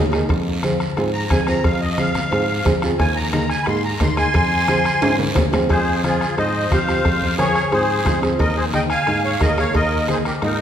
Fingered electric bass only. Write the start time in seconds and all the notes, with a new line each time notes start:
Already playing: D#2
0.30 F2
0.97 G#2
1.31 F2
1.65 F2
2.32 G#2
2.66 F2
3.00 D#2
3.67 G#2
4.01 D#2
4.35 F2
5.02 G#2
5.36 D#2
5.53 F2
5.70 F2
6.39 G#2
6.72 F2
7.05 F2
7.73 G#2
8.06 F2
8.40 D#2
9.08 G#2
9.41 D#2
9.75 D#2
10.42 G#2